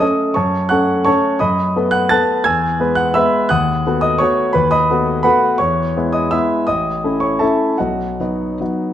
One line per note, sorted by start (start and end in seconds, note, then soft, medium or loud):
0.00 0.33 A3 soft
0.00 0.33 C#4 soft
0.00 0.34 A4 soft
0.00 0.34 D#5 medium
0.00 0.35 D#6 medium
0.34 0.70 F#2 medium
0.34 0.68 C#5 medium
0.34 0.68 A5 medium
0.34 0.69 C#6 medium
0.69 1.04 A3 soft
0.69 1.04 C#4 soft
0.69 1.04 A4 soft
0.69 1.04 F#5 medium
0.69 1.03 C#6 medium
0.69 1.06 F#6 medium
1.05 1.38 A3 soft
1.05 1.38 C#4 soft
1.05 1.38 A4 soft
1.05 1.38 C#5 medium
1.05 1.38 A5 medium
1.05 1.40 C#6 medium
1.39 1.75 F#2 medium
1.39 1.89 D#5 medium
1.39 1.89 B5 medium
1.39 1.92 D#6 medium
1.76 2.08 A3 soft
1.76 2.08 B3 soft
1.76 2.09 B4 soft
1.91 2.10 F#5 medium
1.91 2.09 F#6 medium
2.09 2.43 A3 soft
2.09 2.43 B3 soft
2.09 2.44 B4 soft
2.09 2.44 A5 medium
2.09 2.44 F#6 medium
2.09 2.46 A6 medium
2.44 2.79 E2 medium
2.44 2.94 G#5 medium
2.44 2.94 E6 medium
2.44 2.97 G#6 medium
2.80 3.12 G#3 soft
2.80 3.12 B3 soft
2.80 3.13 B4 soft
2.95 3.14 F#5 medium
2.95 3.15 F#6 medium
3.14 3.48 G#3 soft
3.14 3.48 B3 soft
3.14 3.49 B4 soft
3.14 3.48 E5 medium
3.14 3.49 B5 medium
3.14 3.50 E6 medium
3.49 3.85 D#2 medium
3.49 3.99 F#5 medium
3.49 3.99 D#6 medium
3.49 4.02 F#6 medium
3.87 4.18 A3 soft
3.87 4.18 B3 soft
3.87 4.18 F#4 soft
4.01 4.19 D#5 medium
4.01 4.20 D#6 medium
4.18 4.52 A3 soft
4.18 4.52 B3 soft
4.18 4.52 F#4 soft
4.18 4.52 C#5 medium
4.18 4.54 C#6 medium
4.53 4.89 D#2 medium
4.53 4.71 B4 medium
4.53 4.70 B5 medium
4.71 5.21 D#5 medium
4.71 5.21 B5 medium
4.71 5.25 D#6 medium
4.90 5.22 A3 soft
4.90 5.23 B3 soft
4.90 5.23 F#4 soft
5.23 5.57 A3 soft
5.23 5.58 B3 soft
5.23 5.58 F#4 soft
5.23 5.58 B4 medium
5.23 5.58 F#5 medium
5.23 5.60 B5 medium
5.58 5.95 E2 medium
5.58 6.10 C#5 medium
5.58 6.14 C#6 medium
5.97 6.29 G#3 soft
5.97 6.30 B3 soft
5.97 6.30 E4 soft
6.13 6.31 D#5 medium
6.13 6.32 D#6 medium
6.31 6.65 G#3 soft
6.31 6.65 B3 soft
6.31 6.66 E4 soft
6.31 6.66 E5 medium
6.31 6.66 B5 medium
6.31 6.68 E6 medium
6.67 7.04 A1 soft
6.67 7.19 D#5 medium
6.67 7.22 D#6 medium
7.04 7.38 A3 soft
7.04 7.38 C#4 soft
7.04 7.39 E4 soft
7.20 7.40 C#5 soft
7.20 7.41 C#6 medium
7.39 7.76 A3 soft
7.39 7.77 C#4 soft
7.39 7.77 E4 soft
7.39 7.77 A4 soft
7.39 7.77 E5 soft
7.39 7.79 A5 medium
7.78 8.19 B1 soft
7.78 8.93 F#4 soft
7.78 8.93 D#5 soft
7.78 8.93 F#5 medium
8.20 8.57 F#3 soft
8.20 8.57 B3 soft
8.20 8.57 D#4 soft
8.61 8.93 F#3 soft
8.61 8.93 B3 soft
8.61 8.93 D#4 soft